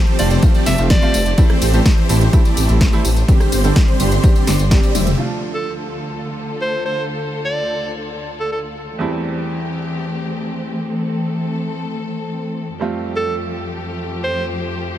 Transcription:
Already playing: F3 A3 C4 G4 C5 G5 A5
0.07 closed hi-hat
0.18 F1 F3 G3 A3 C4 F4 G4 C5 D5, open hi-hat, ride, tambourine
0.31 D5, closed hi-hat, tambourine
0.42 G3 A3 C4 F4, kick, closed hi-hat, ride, tambourine
0.54 F3 A3 C4 G4 D5, closed hi-hat, tambourine
0.66 F1 E5, snare, open hi-hat, ride, tambourine
0.78 F1 G3 A3 C4 F4, closed hi-hat, tambourine
0.90 F3 A3 C4 G4 C5 D5, kick, snare, closed hi-hat, ride, tambourine
1.02 G3 A3 C4 F4, closed hi-hat, tambourine
1.14 F1, open hi-hat, ride, tambourine
1.26 closed hi-hat, tambourine
1.37 E3 G3 A3 C4 E4 G4 C5 E5, kick, closed hi-hat, ride, tambourine
1.50 cross-stick, closed hi-hat
1.62 A1, open hi-hat, ride, tambourine
1.73 E3 G3 A3 C4 G4 C5, closed hi-hat, tambourine
1.86 kick, snare, closed hi-hat, ride, tambourine
1.98 closed hi-hat
2.09 A1 E3 G3 A3 C4 E4 G4 C5, open hi-hat, ride, tambourine
2.21 closed hi-hat, tambourine
2.33 G3 A3 C4 E4, kick, closed hi-hat, ride, tambourine
2.45 E3 A3 C4 G4 D5, closed hi-hat, tambourine
2.57 A1, open hi-hat, ride, tambourine
2.68 A1 G3 A3 C4 E4, closed hi-hat, tambourine
2.81 E3 A3 C4 G4 C5, kick, snare, closed hi-hat, ride, tambourine
2.92 G3 A3 C4 E4, closed hi-hat, tambourine
3.05 A1, open hi-hat, ride, tambourine
3.17 closed hi-hat, tambourine
3.28 D3 G3 C4 D4 G4 C5 D5 C6, kick, closed hi-hat, ride, tambourine
3.40 cross-stick, closed hi-hat, tambourine
3.52 G1, open hi-hat, ride, tambourine
3.64 D3 G3 C4 D4 G4 A4 C5, closed hi-hat, tambourine
3.76 kick, snare, closed hi-hat, ride, tambourine
3.88 closed hi-hat
3.99 G1 D3 G3 C4 D4 G4 C5, open hi-hat, ride, tambourine
4.12 closed hi-hat, tambourine
4.23 G3 C4 D4 G4, kick, closed hi-hat, ride, tambourine
4.35 D3 G3 C4 G4 D5, closed hi-hat, tambourine
4.47 G1, snare, open hi-hat, ride, tambourine
4.59 G1, closed hi-hat, tambourine
4.71 D3 G3 C4 D4 G4 D5, kick, snare, closed hi-hat, ride, tambourine
4.83 D3 G3 C4 G4 D5, closed hi-hat, tambourine
4.95 F1 D3 G3 C4 G4 E5, open hi-hat, high tom, ride, tambourine
5.07 closed hi-hat, mid tom, tambourine
5.18 D2 D3 F3 A3 D4 F4 A4
5.54 A4
6.62 C5
6.85 C5
7.45 D5
8.40 A4
8.52 A4
8.99 E2 E3 G3 A3 C4 E4 G4
10.90 A4
12.80 F2 F3 G3 A3 C4 F4 G4
13.16 A4
14.24 C5

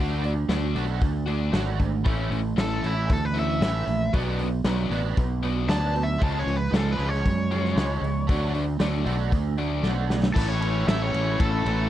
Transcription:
Already playing: D3 A3
0.00 D2 D4 F#4
0.24 A3 D4, open hi-hat
0.49 D2 D3 A3 D4 F#4, snare, open hi-hat
0.75 B1 A3 D4 F#4, open hi-hat
1.01 D2 A3 D4, kick, open hi-hat
1.26 D3 A3 D4 F#4, open hi-hat
1.52 G#1 A3 D4 F#4, snare, open hi-hat
1.79 A3 D4, kick, open hi-hat
2.04 A1 E3 A3 C#4 E4, kick, open hi-hat
2.31 A1 E3 A3, open hi-hat
2.57 A1 E3 A3 C#4 E4 A4, snare, open hi-hat
2.83 A1 E3 A3 C#4 E4, open hi-hat
3.10 D2 E3 A3 A4, kick, open hi-hat
3.25 B4
3.34 E3 A3 C#4 E4, open hi-hat
3.39 E5
3.61 A1 E3 A3 C#4 E5, snare, open hi-hat
3.87 A#1 E3 A3, open hi-hat
4.13 B1 B2 F#3 B3 D4, kick, open hi-hat
4.39 F#3 B3, open hi-hat
4.64 B1 B2 F#3 B3 D4, snare, open hi-hat
4.90 A1 F#3 B3 D4, open hi-hat
5.17 B1 F#3 B3, kick, open hi-hat
5.43 B2 F#3 B3 D4, open hi-hat
5.67 D2 F#3 B3 D4 A5, snare, open hi-hat
5.95 F#3 B3, open hi-hat
6.03 E5
6.18 C#2 C#3 F3 G#3 C#4, kick, open hi-hat
6.23 A5
6.39 C#5
6.44 C#2 F3 G#3, open hi-hat
6.57 B4
6.70 C#2 C#3 F3 G#3 C#4, snare, open hi-hat
6.76 A4
6.93 F3 B4
6.97 C#2 G#3 C#4, open hi-hat
7.09 C#5
7.13 snare
7.24 F#2 F3 G#3, kick, open hi-hat
7.51 C#3 F3 G#3 C#4, open hi-hat
7.65 snare
7.75 C#2 F3 G#3 C#4, snare, open hi-hat
8.01 C#2 F3 G#3, open hi-hat
8.27 D2 D3 F#3 A3 D4 F#4, kick, open hi-hat
8.53 A3 D4, open hi-hat
8.79 D2 D3 F#3 A3 D4, snare, open hi-hat
9.05 B1 A3 D4 F#4, open hi-hat
9.32 D2 A3 D4, kick, open hi-hat
9.58 D3 F#3 A3 D4, open hi-hat
9.83 B1 A3 D4 F#4, snare
10.10 A3 D4, snare
10.23 snare
10.34 A1 A2 E3 A3 C#4 E4 A4, kick, crash
10.48 C#5
10.61 A3 C#4 E4 A4, ride
10.87 A1 E3 A3 C#4 E4 A4 E5, snare, ride
11.02 C#5
11.13 A1 E3 A3 C#4, ride
11.38 A1 E3 A3 C#4 A4, kick, ride
11.65 A1 A3 C#4 E4 A4, ride

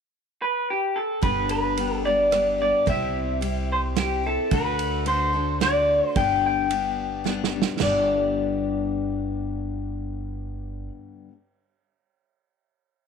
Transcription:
0.42 B4
0.70 G4
0.96 A4
1.21 G1 G2 D3 G3 B3 D4 G4 B4, kick, ride
1.49 B4, ride
1.77 G3 B3 D4 G4, ride
1.95 A4
2.04 G3 B3 D4 G4 D5
2.31 G3 B3 D4 G4, cross-stick, ride
2.58 G3 B3 D4 G4 D5
2.86 C2 C3 G3 C4 E4 G4 E5, kick, ride
3.41 G3 C4 E4 G4, ride
3.72 C5
3.95 G3 C4 E4 G4, snare, ride
4.00 G4
4.24 C4 E4 G4 A4
4.51 D2 D3 A3 D4 F#4 A4 B4, kick, ride
4.79 ride
5.05 A3 D4 F#4 A4 C5, ride
5.33 D4 F#4 A4
5.60 A3 D4 F#4 D5, snare, ride
5.64 A4
6.15 G1 G2 D3 G3 B3 D4 G4 G5, kick, ride
6.46 G5
6.69 G3 B3 D4 G4, ride
7.24 G3 B3 D4 G4, snare
7.44 snare
7.52 G3 B3 D4 G4
7.62 snare
7.78 G1 G2 D3 G3, snare, splash
7.82 B3 D4 G4 D5

